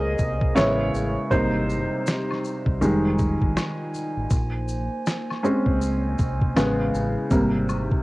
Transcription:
Already playing: C#2 C#3 G#3 A#3 C4 C#4 G#4 A#4 C5 D#5
0.19 C2, kick, maracas
0.42 kick
0.55 A1 C#3 G#3 B3 E4 C#5, snare, high woodblock, maracas
0.94 A1, maracas
1.30 G#1 C3 G3 A#3 D#4 G4 C5, kick, maracas
1.70 maracas
2.07 snare, maracas
2.31 snare, high woodblock
2.45 maracas
2.66 C2, kick
2.81 F1 D#3 G3 G#3 F4 G#5, maracas
3.19 kick, maracas
3.41 G#1, kick
3.57 snare, high woodblock, maracas
3.94 maracas
4.17 A1
4.30 A#1 A#3 C5, kick, maracas
4.68 maracas
5.06 snare, maracas
5.30 snare, high woodblock
5.43 G#3 C4 C#4, maracas
5.66 C#2, kick
5.82 maracas
6.19 C2, kick, maracas
6.41 kick
6.56 A1 C#3 G#3 B3 E4 G#4, snare, high woodblock, maracas
6.94 A1, maracas
7.31 G#1 C3 G3 A#3 D#4 G4 C5, kick, maracas
7.69 high woodblock, maracas
7.91 kick

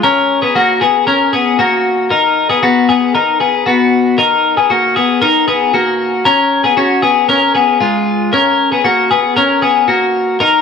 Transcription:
0.03 C#4 A#4
0.42 B3 G#4
0.56 A#3 F#4
0.81 B3 G#4
1.07 C#4 A#4
1.33 B3 G#4
1.59 A#3 F#4
2.10 D#4 A#4
2.50 B3 G#4
2.63 B3 F#4
2.89 B3 G#4
3.15 D#4 A#4
3.40 B3 G#4
3.66 B3 F#4
4.18 D#4 A#4
4.57 B3 G#4
4.70 A#3 F#4
4.96 B3 G#4
5.22 D#4 A#4
5.48 B3 G#4
5.74 A#3 F#4
6.25 C#4 A#4
6.64 B3 G#4
6.77 C#4 F#4
7.02 B3 G#4
7.29 C#4 A#4
7.55 B3 G#4
7.81 G#3 F4
8.33 C#4 A#4
8.72 B3 G#4
8.85 A#3 F#4
9.11 B3 G#4
9.37 C#4 A#4
9.62 B3 G#4
9.88 A#3 F#4
10.40 D#4 A#4

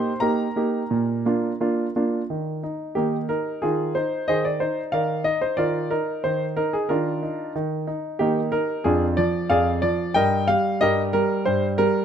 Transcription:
Already playing: A#3 D#4 G4 C5 C6
0.20 A#3 D#4 G4 A#4 A#5
0.56 A#3 D#4 G4
0.91 A#2
1.26 A#3 D4 F4
1.60 A#3 D4 F4
1.96 A#3 D4 F4
2.30 D#3
2.63 D#4
2.95 D#3 A#3 D#4 G4
3.29 D#4 A#4
3.62 D#3 D#4 F4 G#4
3.95 D#4 C5
4.28 D#3 G#4 C5 D#5
4.45 D5
4.60 D#4 C5
4.92 D#3 A#4 D5 F5
5.24 D#4 D#5
5.41 C5
5.57 D#3 F4 A#4 D5
5.91 D#4 A#4
6.24 D#3 C5
6.57 D#4 A#4
6.73 G#4
6.89 D#3 D4 F4 A#4
7.23 D#4
7.55 D#3
7.87 D#4
8.19 D#3 A#3 D#4 G4
8.52 D#4 A#4
8.84 F2 D4 F4 G#4
9.17 F3 D5
9.50 F2 G#4 D5 F5
9.82 F3 D5
10.14 G2 A#4 D#5 G5
10.48 G3 F5
10.81 G2 G4 A#4 D#5
11.13 G3 A#4
11.45 G2 C5
11.78 G3 A#4

